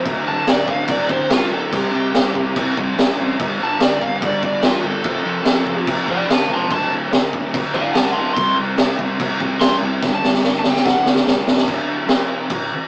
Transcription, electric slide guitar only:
0, 0, Header, 1, 2, 480
1, 0, Start_track
1, 0, Tempo, 415225
1, 62, Time_signature, 4, 2, 24, 8
1, 14887, End_track
2, 0, Start_track
2, 0, Title_t, "Electric slide guitar"
2, 0, Program_c, 0, 29
2, 324, Note_on_c, 0, 81, 102
2, 547, Note_off_c, 0, 81, 0
2, 571, Note_on_c, 0, 74, 94
2, 776, Note_on_c, 0, 77, 91
2, 791, Note_off_c, 0, 74, 0
2, 1013, Note_off_c, 0, 77, 0
2, 1041, Note_on_c, 0, 74, 91
2, 1266, Note_off_c, 0, 74, 0
2, 1288, Note_on_c, 0, 72, 98
2, 1510, Note_off_c, 0, 72, 0
2, 1524, Note_on_c, 0, 65, 85
2, 1748, Note_off_c, 0, 65, 0
2, 1776, Note_on_c, 0, 69, 97
2, 1994, Note_off_c, 0, 69, 0
2, 2028, Note_on_c, 0, 67, 107
2, 2939, Note_off_c, 0, 67, 0
2, 4203, Note_on_c, 0, 81, 94
2, 4408, Note_off_c, 0, 81, 0
2, 4428, Note_on_c, 0, 74, 100
2, 4640, Note_off_c, 0, 74, 0
2, 4647, Note_on_c, 0, 77, 92
2, 4869, Note_off_c, 0, 77, 0
2, 4919, Note_on_c, 0, 74, 92
2, 5126, Note_off_c, 0, 74, 0
2, 5147, Note_on_c, 0, 74, 93
2, 5359, Note_off_c, 0, 74, 0
2, 5367, Note_on_c, 0, 65, 92
2, 5589, Note_off_c, 0, 65, 0
2, 5616, Note_on_c, 0, 69, 108
2, 5834, Note_off_c, 0, 69, 0
2, 5850, Note_on_c, 0, 69, 114
2, 6768, Note_off_c, 0, 69, 0
2, 7056, Note_on_c, 0, 74, 85
2, 7063, Note_on_c, 0, 79, 96
2, 7276, Note_off_c, 0, 79, 0
2, 7279, Note_off_c, 0, 74, 0
2, 7301, Note_on_c, 0, 77, 87
2, 7314, Note_on_c, 0, 81, 92
2, 7506, Note_off_c, 0, 77, 0
2, 7522, Note_off_c, 0, 81, 0
2, 7560, Note_on_c, 0, 81, 96
2, 7567, Note_on_c, 0, 84, 101
2, 7757, Note_off_c, 0, 81, 0
2, 7767, Note_off_c, 0, 84, 0
2, 7787, Note_on_c, 0, 81, 112
2, 7998, Note_off_c, 0, 81, 0
2, 8946, Note_on_c, 0, 74, 96
2, 8967, Note_on_c, 0, 77, 103
2, 9166, Note_off_c, 0, 74, 0
2, 9170, Note_on_c, 0, 78, 80
2, 9171, Note_off_c, 0, 77, 0
2, 9175, Note_on_c, 0, 81, 89
2, 9386, Note_off_c, 0, 81, 0
2, 9395, Note_on_c, 0, 84, 101
2, 9397, Note_off_c, 0, 78, 0
2, 9403, Note_on_c, 0, 81, 94
2, 9632, Note_off_c, 0, 81, 0
2, 9640, Note_off_c, 0, 84, 0
2, 9655, Note_on_c, 0, 84, 119
2, 9890, Note_off_c, 0, 84, 0
2, 11104, Note_on_c, 0, 84, 109
2, 11256, Note_off_c, 0, 84, 0
2, 11728, Note_on_c, 0, 81, 113
2, 11888, Note_off_c, 0, 81, 0
2, 12244, Note_on_c, 0, 81, 102
2, 12371, Note_off_c, 0, 81, 0
2, 12376, Note_on_c, 0, 79, 90
2, 12532, Note_off_c, 0, 79, 0
2, 12537, Note_on_c, 0, 78, 101
2, 12771, Note_off_c, 0, 78, 0
2, 14887, End_track
0, 0, End_of_file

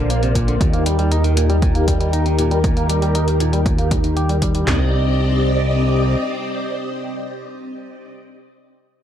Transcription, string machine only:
0, 0, Header, 1, 2, 480
1, 0, Start_track
1, 0, Key_signature, -3, "minor"
1, 0, Tempo, 508475
1, 572, Time_signature, 4, 2, 24, 8
1, 8524, End_track
2, 0, Start_track
2, 0, Title_t, "String machine"
2, 0, Program_c, 0, 50
2, 0, Note_on_c, 0, 58, 81
2, 0, Note_on_c, 0, 70, 74
2, 0, Note_on_c, 0, 72, 74
2, 0, Note_on_c, 0, 74, 74
2, 534, Note_off_c, 0, 70, 0
2, 534, Note_off_c, 0, 72, 0
2, 534, Note_off_c, 0, 74, 0
2, 535, Note_off_c, 0, 58, 0
2, 571, Note_on_c, 0, 63, 82
2, 571, Note_on_c, 0, 67, 72
2, 572, Note_on_c, 0, 70, 89
2, 4374, Note_off_c, 0, 63, 0
2, 4374, Note_off_c, 0, 67, 0
2, 4374, Note_off_c, 0, 70, 0
2, 4411, Note_on_c, 0, 60, 80
2, 4411, Note_on_c, 0, 67, 70
2, 4411, Note_on_c, 0, 74, 73
2, 4412, Note_on_c, 0, 75, 89
2, 7640, Note_off_c, 0, 60, 0
2, 7640, Note_off_c, 0, 67, 0
2, 7640, Note_off_c, 0, 74, 0
2, 7640, Note_off_c, 0, 75, 0
2, 8524, End_track
0, 0, End_of_file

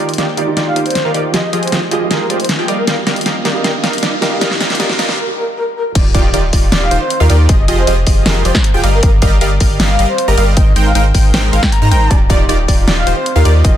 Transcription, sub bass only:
0, 0, Header, 1, 2, 480
1, 0, Start_track
1, 0, Tempo, 384615
1, 1670, Time_signature, 4, 2, 24, 8
1, 17187, End_track
2, 0, Start_track
2, 0, Title_t, "Sub bass"
2, 0, Program_c, 0, 38
2, 0, Note_on_c, 0, 27, 94
2, 205, Note_off_c, 0, 27, 0
2, 946, Note_on_c, 0, 27, 96
2, 1030, Note_off_c, 0, 27, 0
2, 1308, Note_on_c, 0, 27, 92
2, 1405, Note_off_c, 0, 27, 0
2, 1426, Note_on_c, 0, 39, 96
2, 1644, Note_off_c, 0, 39, 0
2, 1906, Note_on_c, 0, 29, 95
2, 2124, Note_off_c, 0, 29, 0
2, 2145, Note_on_c, 0, 29, 91
2, 2364, Note_off_c, 0, 29, 0
2, 3349, Note_on_c, 0, 31, 93
2, 3565, Note_off_c, 0, 31, 0
2, 5027, Note_on_c, 0, 43, 98
2, 5245, Note_off_c, 0, 43, 0
2, 7430, Note_on_c, 0, 27, 94
2, 7646, Note_off_c, 0, 27, 0
2, 7669, Note_on_c, 0, 27, 101
2, 7885, Note_off_c, 0, 27, 0
2, 7909, Note_on_c, 0, 27, 91
2, 8125, Note_off_c, 0, 27, 0
2, 8150, Note_on_c, 0, 27, 106
2, 8366, Note_off_c, 0, 27, 0
2, 8389, Note_on_c, 0, 27, 93
2, 8605, Note_off_c, 0, 27, 0
2, 8630, Note_on_c, 0, 27, 99
2, 8712, Note_off_c, 0, 27, 0
2, 8992, Note_on_c, 0, 39, 96
2, 9087, Note_off_c, 0, 39, 0
2, 9113, Note_on_c, 0, 39, 101
2, 9327, Note_off_c, 0, 39, 0
2, 9349, Note_on_c, 0, 29, 98
2, 9565, Note_off_c, 0, 29, 0
2, 9589, Note_on_c, 0, 29, 99
2, 9806, Note_off_c, 0, 29, 0
2, 9831, Note_on_c, 0, 29, 96
2, 10047, Note_off_c, 0, 29, 0
2, 10069, Note_on_c, 0, 29, 102
2, 10285, Note_off_c, 0, 29, 0
2, 10309, Note_on_c, 0, 29, 94
2, 10525, Note_off_c, 0, 29, 0
2, 10547, Note_on_c, 0, 29, 101
2, 10630, Note_off_c, 0, 29, 0
2, 10906, Note_on_c, 0, 29, 97
2, 11004, Note_off_c, 0, 29, 0
2, 11026, Note_on_c, 0, 31, 99
2, 11244, Note_off_c, 0, 31, 0
2, 11270, Note_on_c, 0, 31, 95
2, 11486, Note_off_c, 0, 31, 0
2, 11508, Note_on_c, 0, 31, 102
2, 11725, Note_off_c, 0, 31, 0
2, 11750, Note_on_c, 0, 31, 93
2, 11966, Note_off_c, 0, 31, 0
2, 11989, Note_on_c, 0, 31, 106
2, 12205, Note_off_c, 0, 31, 0
2, 12228, Note_on_c, 0, 31, 92
2, 12445, Note_off_c, 0, 31, 0
2, 12467, Note_on_c, 0, 31, 99
2, 12550, Note_off_c, 0, 31, 0
2, 12829, Note_on_c, 0, 31, 94
2, 12925, Note_off_c, 0, 31, 0
2, 12947, Note_on_c, 0, 31, 100
2, 13189, Note_on_c, 0, 32, 97
2, 13207, Note_off_c, 0, 31, 0
2, 13405, Note_off_c, 0, 32, 0
2, 13429, Note_on_c, 0, 32, 97
2, 13645, Note_off_c, 0, 32, 0
2, 13665, Note_on_c, 0, 32, 95
2, 13884, Note_off_c, 0, 32, 0
2, 13910, Note_on_c, 0, 32, 106
2, 14126, Note_off_c, 0, 32, 0
2, 14145, Note_on_c, 0, 32, 95
2, 14363, Note_off_c, 0, 32, 0
2, 14385, Note_on_c, 0, 32, 100
2, 14470, Note_off_c, 0, 32, 0
2, 14745, Note_on_c, 0, 44, 97
2, 14866, Note_on_c, 0, 32, 98
2, 14885, Note_off_c, 0, 44, 0
2, 15084, Note_off_c, 0, 32, 0
2, 15109, Note_on_c, 0, 27, 93
2, 15325, Note_off_c, 0, 27, 0
2, 15349, Note_on_c, 0, 27, 97
2, 15565, Note_off_c, 0, 27, 0
2, 15587, Note_on_c, 0, 27, 94
2, 15804, Note_off_c, 0, 27, 0
2, 15829, Note_on_c, 0, 27, 106
2, 16045, Note_off_c, 0, 27, 0
2, 16066, Note_on_c, 0, 27, 100
2, 16284, Note_off_c, 0, 27, 0
2, 16310, Note_on_c, 0, 27, 97
2, 16392, Note_off_c, 0, 27, 0
2, 16669, Note_on_c, 0, 39, 98
2, 16765, Note_off_c, 0, 39, 0
2, 16788, Note_on_c, 0, 39, 100
2, 17005, Note_off_c, 0, 39, 0
2, 17030, Note_on_c, 0, 29, 97
2, 17187, Note_off_c, 0, 29, 0
2, 17187, End_track
0, 0, End_of_file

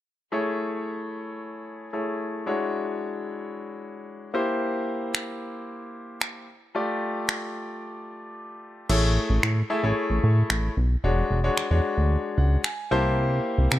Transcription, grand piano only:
0, 0, Header, 1, 2, 480
1, 0, Start_track
1, 0, Tempo, 535714
1, 290, Time_signature, 4, 2, 24, 8
1, 12356, End_track
2, 0, Start_track
2, 0, Title_t, "Grand piano"
2, 0, Program_c, 0, 0
2, 285, Note_on_c, 0, 57, 70
2, 289, Note_on_c, 0, 64, 62
2, 291, Note_on_c, 0, 68, 61
2, 294, Note_on_c, 0, 73, 76
2, 1699, Note_off_c, 0, 57, 0
2, 1701, Note_off_c, 0, 64, 0
2, 1702, Note_off_c, 0, 68, 0
2, 1704, Note_off_c, 0, 73, 0
2, 1729, Note_on_c, 0, 57, 54
2, 1731, Note_on_c, 0, 64, 47
2, 1733, Note_on_c, 0, 68, 46
2, 1734, Note_on_c, 0, 73, 56
2, 2199, Note_off_c, 0, 64, 0
2, 2202, Note_off_c, 0, 73, 0
2, 2207, Note_on_c, 0, 56, 69
2, 2210, Note_off_c, 0, 57, 0
2, 2210, Note_on_c, 0, 62, 62
2, 2212, Note_off_c, 0, 68, 0
2, 2212, Note_on_c, 0, 64, 61
2, 2214, Note_on_c, 0, 66, 61
2, 2216, Note_on_c, 0, 73, 75
2, 3855, Note_off_c, 0, 56, 0
2, 3857, Note_off_c, 0, 62, 0
2, 3858, Note_off_c, 0, 64, 0
2, 3859, Note_off_c, 0, 66, 0
2, 3860, Note_off_c, 0, 73, 0
2, 3886, Note_on_c, 0, 58, 73
2, 3888, Note_on_c, 0, 64, 68
2, 3892, Note_on_c, 0, 67, 66
2, 3894, Note_on_c, 0, 72, 80
2, 5772, Note_off_c, 0, 58, 0
2, 5773, Note_off_c, 0, 64, 0
2, 5776, Note_off_c, 0, 67, 0
2, 5777, Note_off_c, 0, 72, 0
2, 6045, Note_on_c, 0, 57, 71
2, 6049, Note_on_c, 0, 65, 62
2, 6051, Note_on_c, 0, 67, 64
2, 6054, Note_on_c, 0, 74, 77
2, 7932, Note_off_c, 0, 57, 0
2, 7934, Note_off_c, 0, 65, 0
2, 7935, Note_off_c, 0, 67, 0
2, 7937, Note_off_c, 0, 74, 0
2, 7968, Note_on_c, 0, 57, 78
2, 7969, Note_on_c, 0, 64, 73
2, 7971, Note_on_c, 0, 68, 73
2, 7972, Note_on_c, 0, 73, 89
2, 8558, Note_off_c, 0, 57, 0
2, 8559, Note_off_c, 0, 64, 0
2, 8560, Note_off_c, 0, 68, 0
2, 8560, Note_off_c, 0, 73, 0
2, 8690, Note_on_c, 0, 57, 87
2, 8692, Note_on_c, 0, 64, 74
2, 8692, Note_on_c, 0, 68, 77
2, 8694, Note_on_c, 0, 76, 94
2, 8788, Note_off_c, 0, 57, 0
2, 8789, Note_off_c, 0, 64, 0
2, 8790, Note_off_c, 0, 68, 0
2, 8791, Note_off_c, 0, 76, 0
2, 8810, Note_on_c, 0, 57, 81
2, 8811, Note_on_c, 0, 64, 76
2, 8813, Note_on_c, 0, 68, 77
2, 8815, Note_on_c, 0, 73, 90
2, 9596, Note_off_c, 0, 57, 0
2, 9596, Note_off_c, 0, 64, 0
2, 9597, Note_off_c, 0, 68, 0
2, 9598, Note_off_c, 0, 73, 0
2, 9890, Note_on_c, 0, 56, 77
2, 9892, Note_on_c, 0, 62, 76
2, 9892, Note_on_c, 0, 66, 73
2, 9895, Note_on_c, 0, 73, 89
2, 10185, Note_off_c, 0, 56, 0
2, 10186, Note_off_c, 0, 62, 0
2, 10186, Note_off_c, 0, 66, 0
2, 10187, Note_off_c, 0, 73, 0
2, 10248, Note_on_c, 0, 56, 84
2, 10250, Note_on_c, 0, 62, 75
2, 10251, Note_on_c, 0, 66, 75
2, 10252, Note_on_c, 0, 73, 91
2, 10446, Note_off_c, 0, 56, 0
2, 10447, Note_off_c, 0, 62, 0
2, 10447, Note_off_c, 0, 66, 0
2, 10448, Note_off_c, 0, 73, 0
2, 10488, Note_on_c, 0, 56, 78
2, 10490, Note_on_c, 0, 62, 73
2, 10492, Note_on_c, 0, 66, 72
2, 10493, Note_on_c, 0, 73, 86
2, 11091, Note_on_c, 0, 78, 67
2, 11275, Note_off_c, 0, 56, 0
2, 11275, Note_off_c, 0, 62, 0
2, 11277, Note_off_c, 0, 66, 0
2, 11277, Note_off_c, 0, 73, 0
2, 11314, Note_off_c, 0, 78, 0
2, 11330, Note_on_c, 0, 80, 68
2, 11554, Note_off_c, 0, 80, 0
2, 11568, Note_on_c, 0, 58, 92
2, 11570, Note_on_c, 0, 64, 81
2, 11571, Note_on_c, 0, 67, 81
2, 11571, Note_on_c, 0, 81, 74
2, 11573, Note_on_c, 0, 72, 102
2, 11794, Note_off_c, 0, 81, 0
2, 12355, Note_off_c, 0, 58, 0
2, 12355, Note_off_c, 0, 64, 0
2, 12356, Note_off_c, 0, 67, 0
2, 12356, Note_off_c, 0, 72, 0
2, 12356, End_track
0, 0, End_of_file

